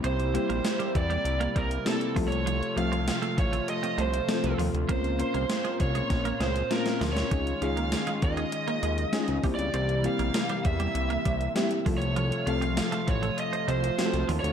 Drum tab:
HH |xxxxxxxxxxxxxxox|xxxxxxxxxxxxxxox|xxxxxxxxxxxxxxox|xxxxxxxxxxxxxxox|
TB |----x-------x---|----x-------x---|----x-----------|----x-------x---|
SD |----o-------o---|----o-------o---|----o---o-o-oooo|----o-------o---|
BD |------o---o---o-|------o---------|o-----o-o-------|o-----o-------o-|

HH |xxxxxxxxxxxxxxox|xxxxxxxxxxxxxxox|
TB |----x-------x---|----x-------x---|
SD |----o-------o---|----o-------o---|
BD |------o---o---o-|------o---------|